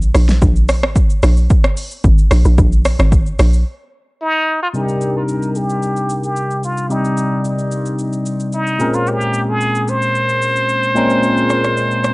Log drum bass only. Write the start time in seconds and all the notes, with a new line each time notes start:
Already playing: A#1
0.15 A#1
0.42 A#1
0.83 G#1
1.23 A#1
2.04 G#1
2.31 A#1
2.45 A#1
2.58 A#1
2.99 G#1
3.39 A#1